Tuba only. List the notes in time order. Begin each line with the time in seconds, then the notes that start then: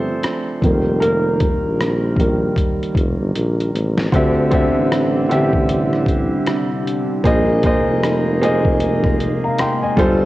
Already playing: G1
0.62 F1
1.63 A#1
2.95 F1
3.20 G1
3.36 A#1
3.75 A1
4.13 D2
4.75 A1
7.24 A#1
7.87 F1
9.97 G1